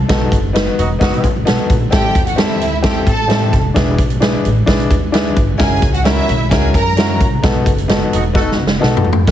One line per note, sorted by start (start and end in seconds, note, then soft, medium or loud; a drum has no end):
0.08 0.26 B1 medium
0.08 0.34 B3 medium
0.08 0.34 D#4 medium
0.08 0.34 F#4 medium
0.08 0.35 A4 medium
0.08 kick loud
0.08 snare loud
0.08 closed hi-hat loud
0.32 0.66 F#1 medium
0.32 kick loud
0.32 closed hi-hat medium
0.53 0.79 B3 medium
0.53 0.80 D#4 medium
0.53 0.80 F#4 medium
0.53 0.80 B4 medium
0.53 snare loud
0.53 closed hi-hat loud
0.78 0.95 E1 medium
0.78 0.88 F#3 medium
0.78 0.88 B3 medium
0.78 0.88 D#4 medium
0.78 0.88 F#4 medium
0.78 closed hi-hat medium
0.99 1.10 F#1 medium
0.99 1.31 F#3 medium
0.99 1.25 B3 medium
0.99 1.30 B3 medium
0.99 1.25 D#4 medium
0.99 1.31 D#4 medium
0.99 1.26 F#4 medium
0.99 1.31 F#4 medium
0.99 1.26 B4 medium
0.99 kick medium
0.99 snare loud
0.99 closed hi-hat medium
1.13 1.21 B1 medium
1.13 closed hi-hat soft
1.24 kick medium
1.24 closed hi-hat medium
1.36 1.44 A1 medium
1.45 1.56 B1 medium
1.45 1.71 B3 medium
1.45 1.71 D#4 medium
1.45 1.71 F#4 medium
1.45 1.72 A4 medium
1.45 snare loud
1.45 closed hi-hat medium
1.70 1.87 A#1 medium
1.70 kick medium
1.70 closed hi-hat medium
1.91 2.10 A1 medium
1.91 2.17 C4 medium
1.91 2.17 E4 medium
1.91 2.17 G4 medium
1.91 2.25 G4 loud
1.91 2.17 A4 medium
1.91 2.25 G5 loud
1.91 kick loud
1.91 snare loud
1.91 closed hi-hat medium
2.15 2.62 E2 medium
2.15 kick loud
2.15 closed hi-hat medium
2.27 2.36 F#4 medium
2.27 2.36 F#5 medium
2.27 closed hi-hat medium
2.36 2.62 C4 medium
2.36 2.63 E4 medium
2.36 2.82 E4 medium
2.36 2.63 G4 medium
2.36 2.63 A4 medium
2.36 2.82 E5 medium
2.36 snare loud
2.36 closed hi-hat medium
2.61 2.84 D2 medium
2.61 closed hi-hat medium
2.83 3.01 E2 medium
2.83 3.09 C4 medium
2.83 3.09 E4 medium
2.83 3.09 G4 medium
2.83 3.03 G4 medium
2.83 3.09 A4 medium
2.83 3.03 G5 medium
2.83 kick medium
2.83 snare loud
2.83 closed hi-hat medium
3.06 3.54 A2 medium
3.06 3.50 A4 loud
3.06 3.50 A5 loud
3.06 kick medium
3.06 closed hi-hat medium
3.28 3.54 C4 medium
3.28 3.54 E4 medium
3.28 3.55 G4 medium
3.28 3.55 A4 medium
3.28 snare loud
3.28 closed hi-hat medium
3.53 3.70 F1 medium
3.53 kick medium
3.53 snare soft
3.53 closed hi-hat medium
3.74 3.93 E1 loud
3.74 4.00 D4 medium
3.74 4.01 E4 medium
3.74 4.01 G#4 medium
3.74 4.01 B4 medium
3.74 kick loud
3.74 snare loud
3.74 closed hi-hat medium
3.98 4.33 B1 medium
3.98 kick loud
3.98 closed hi-hat medium
4.10 closed hi-hat medium
4.20 4.46 D4 medium
4.20 4.46 E4 medium
4.20 4.47 G#4 medium
4.20 4.47 B4 medium
4.20 snare loud
4.20 closed hi-hat loud
4.45 4.62 A1 medium
4.45 closed hi-hat medium
4.66 4.85 B1 medium
4.66 4.92 D4 medium
4.66 4.93 E4 medium
4.66 4.93 G#4 medium
4.66 4.93 B4 medium
4.66 kick medium
4.66 snare loud
4.66 closed hi-hat medium
4.80 closed hi-hat soft
4.90 5.14 E2 medium
4.90 kick medium
4.90 closed hi-hat medium
5.12 5.31 D2 medium
5.12 5.38 D4 medium
5.12 5.39 E4 medium
5.12 5.39 G#4 medium
5.12 5.39 B4 medium
5.12 snare loud
5.12 closed hi-hat loud
5.36 5.54 G1 loud
5.36 kick loud
5.36 closed hi-hat medium
5.58 5.77 F#1 loud
5.58 5.84 C#4 medium
5.58 5.84 E4 medium
5.58 5.84 F#4 medium
5.58 5.92 G#4 loud
5.58 5.85 A#4 medium
5.58 5.92 G#5 loud
5.58 kick loud
5.58 snare loud
5.58 closed hi-hat medium
5.82 6.17 C#2 medium
5.82 kick loud
5.82 closed hi-hat medium
5.94 6.03 F#4 medium
5.94 6.03 F#5 medium
5.94 closed hi-hat medium
6.04 6.30 C#4 medium
6.04 6.30 E4 medium
6.04 6.49 E4 loud
6.04 6.31 F#4 medium
6.04 6.31 A#4 medium
6.04 6.49 E5 loud
6.04 snare loud
6.04 closed hi-hat medium
6.28 6.51 B1 medium
6.28 closed hi-hat medium
6.51 6.69 C#2 medium
6.51 6.76 C#4 medium
6.51 6.77 E4 medium
6.51 6.77 F#4 medium
6.51 6.70 G#4 medium
6.51 6.77 A#4 medium
6.51 6.70 G#5 loud
6.51 kick medium
6.51 snare loud
6.51 closed hi-hat medium
6.74 7.22 F#2 loud
6.74 7.17 A#4 loud
6.74 7.18 A#5 loud
6.74 kick medium
6.74 closed hi-hat medium
6.97 7.22 C#4 medium
6.97 7.23 E4 medium
6.97 7.23 F#4 medium
6.97 7.23 A#4 medium
6.97 snare loud
6.97 closed hi-hat loud
7.21 7.38 C2 medium
7.21 kick medium
7.21 closed hi-hat medium
7.42 7.61 B1 loud
7.42 7.68 B3 medium
7.42 7.68 D#4 medium
7.42 7.69 F#4 medium
7.42 7.69 A4 medium
7.42 kick loud
7.42 snare loud
7.42 closed hi-hat medium
7.66 8.00 F#1 medium
7.66 kick loud
7.66 closed hi-hat medium
7.78 closed hi-hat medium
7.88 8.14 B3 medium
7.88 8.14 D#4 medium
7.88 8.15 F#4 medium
7.88 8.15 A4 medium
7.88 snare loud
7.88 closed hi-hat medium
8.13 8.47 E1 medium
8.13 8.22 F#3 medium
8.13 8.22 B3 medium
8.13 8.22 D#4 medium
8.13 8.22 F#4 medium
8.13 closed hi-hat medium
8.33 8.50 A3 medium
8.33 8.60 B3 medium
8.33 8.60 D#4 medium
8.33 8.50 D#4 medium
8.33 8.60 F#4 medium
8.33 8.51 F#4 medium
8.33 8.50 A4 loud
8.33 8.60 B4 loud
8.33 kick medium
8.33 snare medium
8.52 snare medium
8.58 8.76 F#1 medium
8.67 snare medium
8.80 8.99 B1 medium
8.80 9.06 B3 medium
8.80 9.06 D#4 medium
8.80 9.06 F#4 medium
8.80 9.07 A4 medium
8.80 snare medium
8.97 floor tom loud
9.04 9.22 F2 medium
9.13 floor tom loud
9.25 9.31 E2 medium
9.25 9.31 E4 medium
9.25 9.31 D5 medium
9.25 9.31 G5 loud
9.25 kick loud
9.25 closed hi-hat medium